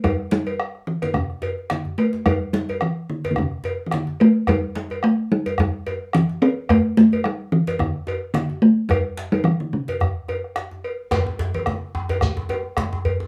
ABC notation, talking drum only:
X:1
M:4/4
L:1/16
Q:"Swing 16ths" 1/4=108
K:C
V:1 name="Talking drum" clef=bass
G,2 G,4 E, D, C,4 D,2 A,2 | G,2 G,2 E,2 D,3/2 D,/2 C,3- C,/2 E,/2 D,2 A,2 | G,2 G,2 A,2 G,2 G,4 E,2 C2 | A,2 A,2 G,2 E,2 D,4 D,2 A,2 |
G,3 G, E, D, C,8 z2 | z16 |]